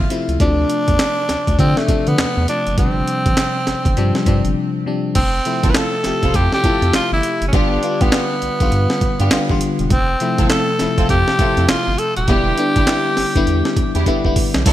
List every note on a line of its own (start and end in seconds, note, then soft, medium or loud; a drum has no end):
0.00 0.10 C3 medium
0.00 0.11 F3 medium
0.00 0.11 A3 medium
0.00 0.12 E4 loud
0.00 0.11 F4 medium
0.00 0.42 E5 loud
0.10 0.33 C3 medium
0.10 0.33 F3 medium
0.10 0.33 A3 medium
0.10 0.33 E4 medium
0.10 closed hi-hat medium
0.28 0.38 C#2 medium
0.28 closed hi-hat soft
0.40 0.65 D2 loud
0.40 1.22 C3 medium
0.40 1.23 F3 medium
0.40 1.23 A3 medium
0.40 1.55 D4 loud
0.40 1.23 D4 medium
0.40 kick loud
0.40 closed hi-hat medium
0.70 closed hi-hat medium
0.88 0.98 E2 medium
0.88 kick medium
0.88 closed hi-hat medium
0.99 snare loud
0.99 clap medium
0.99 closed hi-hat medium
1.29 1.37 D2 soft
1.29 snare medium
1.29 closed hi-hat medium
1.47 1.57 D2 medium
1.47 kick medium
1.47 closed hi-hat medium
1.59 1.81 C3 medium
1.59 1.74 D3 loud
1.59 1.81 F3 medium
1.59 1.81 A3 medium
1.59 1.79 C4 medium
1.59 1.82 D4 loud
1.59 kick medium
1.59 closed hi-hat medium
1.77 2.09 A3 medium
1.77 snare medium
1.88 2.31 C3 medium
1.88 1.96 D3 soft
1.88 2.31 F3 medium
1.88 2.32 A3 medium
1.88 2.32 D4 medium
1.88 kick medium
1.88 closed hi-hat medium
2.07 2.17 D3 medium
2.07 2.48 B3 loud
2.07 closed hi-hat medium
2.18 2.26 E2 soft
2.18 snare loud
2.18 clap medium
2.18 closed hi-hat medium
2.37 2.47 E2 loud
2.48 2.70 C3 medium
2.48 2.71 F3 medium
2.48 2.71 A3 medium
2.48 2.76 D4 loud
2.48 2.71 D4 medium
2.48 closed hi-hat medium
2.67 2.76 F#1 medium
2.67 closed hi-hat medium
2.78 3.03 G1 loud
2.78 2.86 B2 medium
2.78 3.61 F3 medium
2.78 3.61 G3 medium
2.78 4.52 C4 medium
2.78 3.61 D4 medium
2.78 kick loud
2.78 closed hi-hat medium
2.84 3.64 C3 medium
3.08 closed hi-hat medium
3.26 3.35 A1 loud
3.26 kick medium
3.26 closed hi-hat medium
3.37 snare loud
3.37 clap medium
3.37 closed hi-hat medium
3.67 3.75 G1 soft
3.67 snare medium
3.67 closed hi-hat medium
3.85 3.95 G1 medium
3.85 kick medium
3.85 closed hi-hat soft
3.97 4.12 G2 loud
3.97 4.19 C3 loud
3.97 4.19 F3 medium
3.97 4.19 G3 loud
3.97 4.20 D4 loud
3.97 closed hi-hat medium
4.15 snare medium
4.26 4.42 G2 loud
4.26 4.69 C3 loud
4.26 4.69 F3 medium
4.26 4.69 G3 medium
4.26 4.70 D4 loud
4.26 kick medium
4.26 closed hi-hat medium
4.45 4.54 G1 medium
4.45 closed hi-hat medium
4.86 5.08 C3 medium
4.86 5.08 F3 medium
4.86 5.09 G3 medium
4.86 5.09 D4 medium
5.15 5.41 F1 loud
5.15 5.72 C4 loud
5.15 kick loud
5.15 closed hi-hat medium
5.15 crash medium
5.45 5.88 C3 medium
5.45 5.88 F3 medium
5.45 5.88 A3 medium
5.45 5.88 E4 medium
5.45 closed hi-hat medium
5.63 5.73 G1 loud
5.63 5.78 C4 medium
5.63 5.78 E4 medium
5.63 5.78 F4 medium
5.63 5.79 A4 medium
5.63 kick medium
5.63 closed hi-hat medium
5.70 5.78 B4 medium
5.74 6.37 A4 loud
5.74 snare loud
5.74 clap medium
5.74 closed hi-hat medium
6.04 6.12 F1 soft
6.04 6.47 C3 medium
6.04 6.48 F3 medium
6.04 6.48 A3 medium
6.04 6.48 G4 medium
6.04 snare medium
6.04 closed hi-hat medium
6.23 6.32 F1 medium
6.23 6.38 C4 medium
6.23 6.38 E4 medium
6.23 6.38 F4 medium
6.23 6.38 A4 medium
6.23 kick medium
6.23 closed hi-hat medium
6.34 6.50 F2 loud
6.34 6.53 G4 loud
6.34 kick medium
6.34 closed hi-hat medium
6.52 6.91 G4 loud
6.52 snare medium
6.64 6.71 F2 medium
6.64 7.25 C3 medium
6.64 7.25 F3 medium
6.64 7.25 A3 medium
6.64 6.84 C4 medium
6.64 6.84 E4 medium
6.64 7.25 E4 medium
6.64 6.85 F4 medium
6.64 6.85 A4 medium
6.64 kick medium
6.64 closed hi-hat medium
6.82 6.92 F2 medium
6.82 closed hi-hat medium
6.93 7.01 G1 soft
6.93 7.11 F4 loud
6.93 snare loud
6.93 clap medium
6.93 closed hi-hat medium
7.12 7.22 G1 loud
7.12 7.46 E4 loud
7.23 closed hi-hat medium
7.42 7.51 F#1 medium
7.42 closed hi-hat medium
7.48 7.56 C#4 medium
7.53 7.78 G1 loud
7.53 7.75 D3 medium
7.53 7.76 G3 medium
7.53 7.73 B3 medium
7.53 7.76 B3 medium
7.53 7.74 D4 medium
7.53 8.04 D4 loud
7.53 7.74 F4 medium
7.53 7.76 F4 medium
7.53 7.74 G4 loud
7.53 kick loud
7.53 closed hi-hat medium
7.83 8.05 D3 medium
7.83 8.05 G3 medium
7.83 8.05 B3 medium
7.83 8.06 F4 medium
7.83 closed hi-hat medium
8.01 8.11 B1 medium
8.01 8.16 B3 medium
8.01 9.62 B3 medium
8.01 8.16 D4 medium
8.01 8.16 F4 medium
8.01 8.16 G4 medium
8.01 kick medium
8.01 closed hi-hat medium
8.12 8.43 D3 medium
8.12 8.43 G3 medium
8.12 8.43 B3 medium
8.12 8.43 F4 medium
8.12 snare loud
8.12 clap medium
8.12 closed hi-hat medium
8.42 8.49 B1 soft
8.42 closed hi-hat medium
8.60 8.70 B1 medium
8.60 9.09 D3 medium
8.60 9.09 G3 medium
8.60 9.09 B3 medium
8.60 9.09 F4 loud
8.60 kick medium
8.60 closed hi-hat medium
8.72 8.87 G2 loud
8.72 closed hi-hat medium
8.90 snare medium
9.01 9.09 G2 medium
9.01 kick medium
9.01 closed hi-hat medium
9.19 9.29 G2 loud
9.19 9.35 B3 medium
9.19 9.35 D4 medium
9.19 9.35 F4 medium
9.19 9.35 G4 medium
9.19 closed hi-hat medium
9.31 9.39 A1 soft
9.31 9.44 D3 medium
9.31 9.44 G3 medium
9.31 9.44 B3 medium
9.31 9.44 F4 loud
9.31 snare loud
9.31 clap medium
9.31 closed hi-hat medium
9.49 9.59 A1 loud
9.49 9.91 D3 loud
9.49 9.91 G3 medium
9.49 9.91 B3 medium
9.49 9.91 F4 loud
9.49 kick medium
9.61 closed hi-hat medium
9.79 9.89 E1 medium
9.79 closed hi-hat soft
9.90 10.16 F1 loud
9.90 10.46 C4 loud
9.90 kick loud
9.90 closed hi-hat medium
10.20 10.63 C3 medium
10.20 10.63 F3 medium
10.20 10.64 A3 medium
10.20 10.64 E4 medium
10.20 closed hi-hat medium
10.38 10.48 G1 loud
10.38 10.54 C4 medium
10.38 10.54 E4 medium
10.38 10.54 F4 medium
10.38 10.54 A4 medium
10.38 kick medium
10.38 closed hi-hat medium
10.50 11.05 A4 loud
10.50 snare loud
10.50 clap medium
10.50 closed hi-hat medium
10.79 10.87 F1 soft
10.79 11.23 C3 medium
10.79 11.23 F3 medium
10.79 11.23 A3 medium
10.79 11.23 E4 medium
10.79 snare medium
10.79 closed hi-hat medium
10.98 11.08 F1 medium
10.98 11.13 C4 medium
10.98 11.13 E4 medium
10.98 11.13 F4 medium
10.98 11.13 A4 medium
10.98 kick medium
10.98 closed hi-hat medium
11.09 11.25 F2 loud
11.09 11.70 G4 loud
11.09 kick medium
11.09 closed hi-hat medium
11.28 snare medium
11.39 11.46 F2 soft
11.39 12.00 C3 medium
11.39 12.00 F3 medium
11.39 12.00 A3 medium
11.39 11.59 C4 medium
11.39 11.60 E4 medium
11.39 12.00 E4 medium
11.39 11.60 F4 medium
11.39 11.60 A4 medium
11.39 kick medium
11.39 closed hi-hat medium
11.57 11.67 F2 loud
11.57 closed hi-hat medium
11.69 11.76 G1 medium
11.69 12.00 F4 loud
11.69 snare loud
11.69 clap medium
11.69 closed hi-hat medium
11.87 11.97 G1 medium
11.98 12.16 A4 medium
11.98 closed hi-hat medium
12.16 12.27 D#1 medium
12.16 14.02 G4 loud
12.16 closed hi-hat medium
12.28 12.53 E1 loud
12.28 12.51 D3 medium
12.28 12.51 G3 medium
12.28 12.49 B3 loud
12.28 12.51 B3 medium
12.28 12.49 D4 medium
12.28 12.49 E4 medium
12.28 12.51 E4 medium
12.28 12.49 G4 loud
12.28 kick loud
12.28 closed hi-hat medium
12.57 12.80 D3 medium
12.57 12.80 G3 medium
12.57 12.81 B3 medium
12.57 12.81 D4 medium
12.57 closed hi-hat medium
12.76 12.86 G1 medium
12.76 12.91 B3 medium
12.76 12.91 D4 medium
12.76 12.91 E4 medium
12.76 12.91 G4 medium
12.76 kick medium
12.76 closed hi-hat medium
12.87 13.18 D3 medium
12.87 13.18 G3 medium
12.87 13.18 B3 medium
12.87 13.18 E4 medium
12.87 snare loud
12.87 clap medium
12.87 closed hi-hat medium
13.17 13.25 G1 soft
13.17 snare medium
13.17 open hi-hat medium
13.35 13.45 G1 loud
13.35 13.84 D3 loud
13.35 13.84 G3 medium
13.35 13.84 B3 loud
13.35 13.84 E4 loud
13.35 kick medium
13.35 closed hi-hat medium
13.47 13.63 E2 loud
13.47 closed hi-hat medium
13.65 snare medium
13.77 13.84 E2 soft
13.77 kick medium
13.77 closed hi-hat medium
13.95 14.05 E2 loud
13.95 14.10 B3 medium
13.95 14.10 D4 medium
13.95 14.10 E4 medium
13.95 14.10 G4 medium
13.95 closed hi-hat medium
14.06 14.14 E1 soft
14.06 14.19 D3 medium
14.06 14.19 G3 medium
14.06 14.19 B3 medium
14.06 14.20 E4 loud
14.06 kick medium
14.06 closed hi-hat medium
14.25 14.34 E1 loud
14.25 14.66 D3 loud
14.25 14.66 G3 medium
14.25 14.66 B3 medium
14.25 14.66 E4 loud
14.25 kick medium
14.36 kick medium
14.36 open hi-hat medium
14.54 14.64 B1 medium
14.54 snare medium
14.54 closed hi-hat medium
14.65 14.73 C2 loud
14.65 14.73 C4 loud
14.65 14.73 D4 medium
14.65 14.73 E4 medium
14.65 14.73 A4 loud
14.65 kick loud
14.65 closed hi-hat medium
14.65 crash loud
14.65 tambourine medium